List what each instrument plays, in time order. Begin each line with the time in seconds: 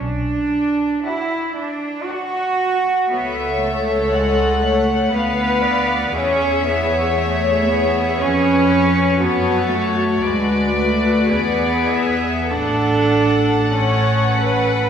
0.00 double bass section B1, cello section D4
1.05 cello section E4, viola section F#4, violin section D5 F#5
1.57 cello section D4
2.08 cello section F#4, viola section F#4, violin section D5 F#5
3.11 double bass section C#2, cello section B3, viola section A4, violin section C#5 E5
3.61 cello section A3
4.11 cello section G#3, violin section F#5
4.63 cello section A3
5.13 double bass section D2, cello section B3, violin section B4 F5, viola section B4
5.64 violin section D5
6.15 double bass section E2, cello section C#4, viola section G#4, violin section C#5 E5
6.66 cello section B3
7.17 cello section A3, viola section G#4, violin section E5
7.69 cello section B3
8.20 double bass section F2, cello section C#4, violin section B4 C#5
9.19 double bass section F#2, cello section B3, viola section F#4, violin section A4 C#5
9.72 cello section A3
10.23 double bass section D2, cello section G#3, viola section F#4, violin section B4 D5
10.77 cello section A3
11.31 double bass section E2, cello section B3, viola section G#4, violin section D5
11.89 violin section E5
12.50 double bass section A1, cello section D4, violin section A4 F#5, viola section A4
13.75 cello section C#4, viola section C#5
14.38 viola section B4